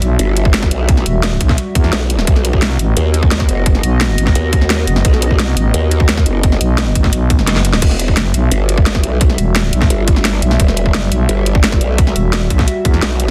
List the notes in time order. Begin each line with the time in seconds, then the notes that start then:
Already playing: G3 F#4 E5
0.02 B1, closed hi-hat
0.19 G1, closed hi-hat
0.37 closed hi-hat
0.45 kick
0.54 snare, closed hi-hat
0.63 kick, snare
0.71 B1, closed hi-hat
0.89 kick, closed hi-hat
0.97 snare
1.06 E1, closed hi-hat
1.23 snare, closed hi-hat
1.41 B1, kick, closed hi-hat
1.49 kick, snare
1.58 closed hi-hat
1.75 E2, kick, closed hi-hat
1.84 snare
1.93 B1, snare, closed hi-hat
2.10 closed hi-hat
2.19 snare
2.27 B1 B3 D#5, kick, closed hi-hat
2.36 snare
2.45 closed hi-hat
2.53 kick
2.62 C2, snare, closed hi-hat
2.79 A1, closed hi-hat
2.97 D#2, closed hi-hat
3.14 closed hi-hat
3.23 kick
3.31 snare, closed hi-hat
3.40 kick, snare
3.49 F#1, closed hi-hat
3.66 kick, closed hi-hat
3.75 snare
3.83 B1, closed hi-hat
4.01 snare, closed hi-hat
4.18 A1, closed hi-hat
4.27 kick, snare
4.35 D#2, closed hi-hat
4.53 kick, closed hi-hat
4.61 snare
4.70 snare, closed hi-hat
4.87 F#1, closed hi-hat
4.96 snare
5.05 B1, kick, closed hi-hat
5.13 snare
5.22 closed hi-hat
5.31 kick
5.39 C2, snare, closed hi-hat
5.57 A1, closed hi-hat
5.74 D#2, closed hi-hat
5.91 closed hi-hat
6.00 kick
6.09 snare, closed hi-hat
6.17 kick, snare
6.26 F#1, closed hi-hat
6.43 kick, closed hi-hat
6.52 snare
6.61 B1, closed hi-hat
6.78 snare, closed hi-hat
6.95 A1, kick, closed hi-hat
7.04 kick, snare
7.13 B1, closed hi-hat
7.30 kick, closed hi-hat
7.39 snare
7.47 F#1, snare, closed hi-hat
7.56 snare
7.65 closed hi-hat
7.73 snare
7.82 E1 G3 F#4 E5, kick, closed hi-hat, crash
7.91 snare
8.00 closed hi-hat
8.08 kick
8.17 F#1, snare, closed hi-hat
8.34 B1, closed hi-hat
8.52 G1, closed hi-hat
8.69 closed hi-hat
8.78 kick
8.86 snare, closed hi-hat
8.95 kick, snare
9.04 B1, closed hi-hat
9.21 kick, closed hi-hat
9.30 snare
9.38 E1, closed hi-hat
9.56 snare, closed hi-hat
9.73 B1, closed hi-hat
9.82 kick, snare
9.90 G1, closed hi-hat
10.08 kick, closed hi-hat
10.16 snare
10.25 snare, closed hi-hat
10.42 B1, closed hi-hat
10.51 snare
10.60 E1, kick, closed hi-hat
10.68 snare
10.77 closed hi-hat
10.86 kick
10.94 F#1, snare, closed hi-hat
11.12 B1, closed hi-hat
11.29 G1, closed hi-hat
11.46 closed hi-hat
11.55 kick
11.64 snare, closed hi-hat
11.72 kick, snare
11.81 B1, closed hi-hat
11.98 kick, closed hi-hat
12.07 snare
12.16 E1, closed hi-hat
12.33 snare, closed hi-hat
12.50 B1, kick, closed hi-hat
12.59 kick, snare
12.68 closed hi-hat
12.85 E2, kick, closed hi-hat
12.94 snare
13.02 B1, snare, closed hi-hat
13.20 closed hi-hat